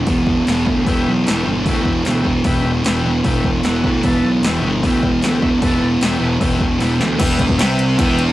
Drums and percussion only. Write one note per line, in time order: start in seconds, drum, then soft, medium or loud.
0.07 kick loud
0.07 open hi-hat medium
0.27 kick medium
0.47 snare loud
0.47 open hi-hat medium
0.66 kick medium
0.87 kick loud
0.87 open hi-hat medium
1.27 snare loud
1.27 open hi-hat medium
1.66 kick loud
1.66 open hi-hat medium
1.85 kick medium
2.05 snare loud
2.05 open hi-hat medium
2.25 kick medium
2.44 kick loud
2.44 open hi-hat medium
2.84 snare loud
2.84 open hi-hat medium
3.24 kick loud
3.24 open hi-hat medium
3.44 kick medium
3.63 snare loud
3.63 open hi-hat soft
3.84 kick medium
4.03 kick loud
4.03 open hi-hat medium
4.43 snare loud
4.43 open hi-hat medium
4.83 kick loud
4.83 open hi-hat medium
5.03 kick medium
5.22 snare loud
5.22 open hi-hat medium
5.42 kick medium
5.62 kick loud
5.62 open hi-hat medium
6.01 snare loud
6.01 open hi-hat medium
6.41 kick loud
6.41 open hi-hat medium
6.61 kick medium
6.80 snare medium
6.80 open hi-hat medium
7.01 snare medium
7.20 kick loud
7.20 crash loud
7.20 ride loud
7.39 kick medium
7.39 ride medium
7.49 kick medium
7.59 snare loud
7.59 ride loud
7.79 ride medium
7.99 kick loud
7.99 ride loud
8.19 ride medium